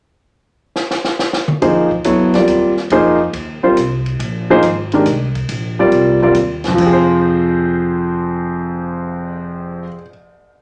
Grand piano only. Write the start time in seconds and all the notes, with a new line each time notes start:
1.62 F3 A#3 D#4 G#4 C5
2.05 F#3 B3 E4 A4 C#5
2.35 G3 C4 F4 A#4 D5
2.92 F3 A#3 D#4 G#4 C5
3.63 G3 C4 F4 A#4 C5
4.50 F3 A#3 D#4 G#4 C5
4.94 D#3 G#3 D4 G4 A#4
5.79 G3 C4 F4 A#4 D5
6.22 G3 C4 F4 A#4 D5
6.68 F2
6.74 F3
6.80 C4
6.87 G#4
6.93 C5